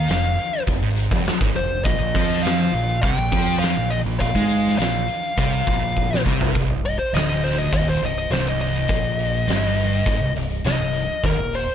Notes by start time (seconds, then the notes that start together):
Already playing: F5
0.08 F1 F2, snare, closed hi-hat
0.24 closed hi-hat
0.39 closed hi-hat
0.53 closed hi-hat
0.67 F1 F2, kick, closed hi-hat
0.81 G#1 G#2, closed hi-hat
0.97 closed hi-hat
1.11 F1 F2, kick, closed hi-hat
1.25 muted fingered electric bass stroke, muted distorted electric guitar stroke, snare, closed hi-hat
1.41 G#1 G#2, kick, closed hi-hat
1.55 F1 F2 C5, closed hi-hat
1.84 A#1 A#2 D#5, kick, closed hi-hat
1.99 A#1 A#2, closed hi-hat
2.14 F2 F3, kick, closed hi-hat
2.30 snare, closed hi-hat
2.43 F5, closed hi-hat
2.47 snare
2.72 A#1 A#2, closed hi-hat
2.88 closed hi-hat
3.03 C2 C3 G5, kick, closed hi-hat
3.17 A#1 A#2, closed hi-hat
3.32 F2 F3, kick, closed hi-hat
3.59 F5, closed hi-hat
3.64 snare
3.76 A#1 A#2, closed hi-hat
3.90 D#5, closed hi-hat
4.05 A#1 A#2, closed hi-hat
4.20 F5, kick, closed hi-hat
4.35 G#2 G#3, kick
4.49 closed hi-hat
4.65 snare, closed hi-hat
4.79 A#1 A#2 F5, snare, closed hi-hat
4.93 closed hi-hat
5.08 closed hi-hat
5.22 closed hi-hat
5.37 C2 C3, kick, closed hi-hat
5.52 closed hi-hat
5.67 A#1 A#2, kick, closed hi-hat
5.82 closed hi-hat
5.97 kick
6.14 snare
6.25 C2 C3, kick
6.41 floor tom
6.55 C1 C2, kick, closed hi-hat
6.69 C1 C2
6.85 D#5, closed hi-hat
6.99 C5, closed hi-hat
7.13 D1 D2 D#5, snare, closed hi-hat
7.29 D#5, snare
7.43 C5, snare, closed hi-hat
7.58 D#5, closed hi-hat
7.72 D#1 D#2 D#5, kick, closed hi-hat
7.88 C5, closed hi-hat
8.02 C1 C2, closed hi-hat
8.06 D#5
8.17 D#5, closed hi-hat
8.30 C1 C2 C5, snare, closed hi-hat
8.48 D#5
8.60 D#5, closed hi-hat
8.89 A#1 A#2, kick, closed hi-hat
9.19 closed hi-hat
9.34 closed hi-hat
9.47 G1 G2, snare, closed hi-hat
9.66 snare
9.77 closed hi-hat
10.06 G#1 G#2, kick, closed hi-hat
10.21 C1 C2
10.36 C1 C2, closed hi-hat
10.50 closed hi-hat
10.64 C1 C2 D#5, snare, closed hi-hat
10.79 C1 C2, closed hi-hat
10.93 closed hi-hat
11.23 D#1 D#2 A#4, kick, closed hi-hat
11.38 D#1 D#2
11.53 C5, closed hi-hat
11.68 closed hi-hat